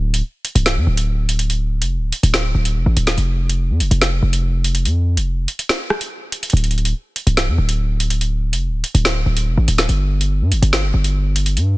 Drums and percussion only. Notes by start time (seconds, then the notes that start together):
0.14 closed hi-hat
0.45 closed hi-hat
0.56 closed hi-hat
0.66 snare
0.97 closed hi-hat
1.29 closed hi-hat
1.39 closed hi-hat
1.50 closed hi-hat
1.82 closed hi-hat
2.12 closed hi-hat
2.23 closed hi-hat
2.34 snare, closed hi-hat
2.65 closed hi-hat
2.97 closed hi-hat
3.07 snare, closed hi-hat
3.18 closed hi-hat
3.50 closed hi-hat
3.80 closed hi-hat
3.91 closed hi-hat
4.02 snare
4.33 closed hi-hat
4.64 closed hi-hat
4.75 closed hi-hat
4.85 closed hi-hat
5.17 closed hi-hat
5.48 closed hi-hat
5.59 closed hi-hat
5.69 snare, closed hi-hat
5.90 cross-stick
6.01 closed hi-hat
6.32 closed hi-hat
6.43 closed hi-hat
6.50 closed hi-hat
6.57 closed hi-hat
6.64 closed hi-hat
6.71 closed hi-hat
6.78 closed hi-hat
6.85 closed hi-hat
7.16 closed hi-hat
7.27 closed hi-hat
7.37 snare
7.69 closed hi-hat
8.00 closed hi-hat
8.10 closed hi-hat
8.21 closed hi-hat
8.53 closed hi-hat
8.84 closed hi-hat
8.95 closed hi-hat
9.05 snare, closed hi-hat
9.37 closed hi-hat
9.68 closed hi-hat
9.78 snare, closed hi-hat
9.89 closed hi-hat
10.21 closed hi-hat
10.52 closed hi-hat
10.63 closed hi-hat
10.73 snare
11.04 closed hi-hat
11.36 closed hi-hat
11.46 closed hi-hat
11.57 closed hi-hat